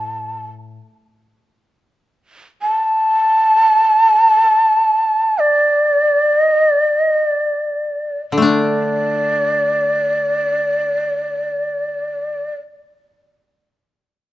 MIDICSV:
0, 0, Header, 1, 3, 480
1, 0, Start_track
1, 0, Tempo, 500000
1, 13754, End_track
2, 0, Start_track
2, 0, Title_t, "Shakuhachi"
2, 0, Program_c, 0, 77
2, 0, Note_on_c, 0, 81, 67
2, 437, Note_off_c, 0, 81, 0
2, 2511, Note_on_c, 0, 81, 82
2, 5170, Note_on_c, 0, 74, 62
2, 5184, Note_off_c, 0, 81, 0
2, 6130, Note_off_c, 0, 74, 0
2, 6130, Note_on_c, 0, 75, 62
2, 6389, Note_off_c, 0, 75, 0
2, 6389, Note_on_c, 0, 74, 62
2, 6667, Note_off_c, 0, 74, 0
2, 6667, Note_on_c, 0, 75, 62
2, 6927, Note_off_c, 0, 75, 0
2, 6927, Note_on_c, 0, 74, 62
2, 7878, Note_off_c, 0, 74, 0
2, 8107, Note_on_c, 0, 74, 56
2, 12039, Note_off_c, 0, 74, 0
2, 13754, End_track
3, 0, Start_track
3, 0, Title_t, "Koto"
3, 0, Program_c, 1, 107
3, 0, Note_on_c, 1, 45, 42
3, 733, Note_off_c, 1, 45, 0
3, 7989, Note_on_c, 1, 50, 33
3, 8040, Note_on_c, 1, 57, 36
3, 8084, Note_on_c, 1, 62, 37
3, 11959, Note_off_c, 1, 50, 0
3, 12010, Note_off_c, 1, 57, 0
3, 12055, Note_off_c, 1, 62, 0
3, 13754, End_track
0, 0, End_of_file